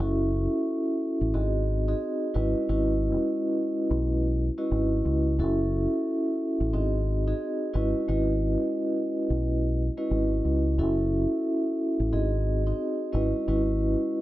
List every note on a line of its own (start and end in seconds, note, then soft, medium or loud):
0.00 0.46 F#1 loud
0.00 1.35 C#4 medium
0.00 1.35 E4 medium
0.00 1.33 F#4 medium
0.00 1.35 A4 medium
0.00 1.35 E5 loud
1.21 1.33 A1 medium
1.34 1.93 G#1 medium
1.34 1.83 C4 loud
1.34 1.83 D#4 medium
1.34 1.83 F#4 medium
1.34 1.83 G#4 medium
1.34 1.84 D#5 loud
1.88 2.32 C4 medium
1.88 2.32 D#4 medium
1.88 2.32 F#4 medium
1.88 2.32 G#4 medium
1.88 2.32 D#5 loud
2.34 2.53 G#1 loud
2.34 2.66 G#3 medium
2.34 2.66 C#4 medium
2.34 2.67 E4 medium
2.34 2.67 F#4 medium
2.34 2.67 B4 medium
2.34 2.67 D#5 medium
2.69 3.16 G#1 loud
2.69 4.40 G#3 medium
2.69 4.40 C#4 medium
2.69 4.40 E4 medium
2.69 4.40 F#4 medium
2.69 4.40 B4 medium
2.69 4.40 D#5 loud
3.91 4.49 B1 medium
4.58 5.33 G#3 medium
4.58 5.33 C#4 medium
4.58 5.34 E4 medium
4.58 5.34 F#4 medium
4.58 5.34 B4 medium
4.58 5.34 D#5 loud
4.72 5.01 G#1 medium
5.05 5.40 C#2 medium
5.39 5.86 F#1 loud
5.39 6.74 C#4 medium
5.39 6.74 E4 medium
5.39 6.72 F#4 medium
5.39 6.74 A4 medium
5.39 6.74 E5 loud
6.60 6.72 A1 medium
6.73 7.32 G#1 loud
6.73 7.23 C4 medium
6.73 7.23 D#4 medium
6.73 7.23 F#4 medium
6.73 7.23 G#4 medium
6.73 7.23 D#5 loud
7.27 7.71 C4 medium
7.27 7.71 D#4 medium
7.27 7.72 F#4 medium
7.27 7.72 G#4 medium
7.27 7.72 D#5 loud
7.73 7.93 G#1 loud
7.73 8.06 G#3 medium
7.73 8.06 C#4 medium
7.73 8.06 E4 medium
7.73 8.06 F#4 medium
7.73 8.06 B4 medium
7.73 8.06 D#5 loud
8.08 8.55 G#1 loud
8.08 9.79 G#3 medium
8.08 9.79 C#4 medium
8.08 9.80 E4 medium
8.08 9.80 F#4 medium
8.08 9.80 B4 medium
8.08 9.80 D#5 loud
9.30 9.88 B1 medium
9.97 10.73 G#3 medium
9.97 10.73 C#4 medium
9.97 10.73 E4 medium
9.97 10.73 F#4 medium
9.97 10.73 B4 medium
9.97 10.73 D#5 loud
10.11 10.40 G#1 medium
10.45 10.80 C#2 medium
10.78 11.25 F#1 loud
10.78 12.13 C#4 medium
10.78 12.13 E4 medium
10.78 12.11 F#4 medium
10.78 12.14 A4 medium
10.78 12.14 E5 loud
12.00 12.11 A1 medium
12.13 12.71 G#1 medium
12.13 12.62 C4 medium
12.13 12.62 D#4 medium
12.13 12.62 F#4 medium
12.13 12.62 G#4 medium
12.13 12.62 D#5 loud
12.67 13.11 C4 medium
12.67 13.11 D#4 medium
12.67 13.11 F#4 medium
12.67 13.11 G#4 medium
12.67 13.11 D#5 medium
13.12 13.32 G#1 loud
13.12 13.45 G#3 medium
13.12 13.45 C#4 medium
13.12 13.45 E4 medium
13.12 13.45 F#4 medium
13.12 13.45 B4 medium
13.12 13.45 D#5 loud
13.48 13.95 G#1 loud
13.48 14.21 G#3 medium
13.48 14.21 C#4 medium
13.48 14.21 E4 medium
13.48 14.21 F#4 medium
13.48 14.21 B4 medium
13.48 14.21 D#5 loud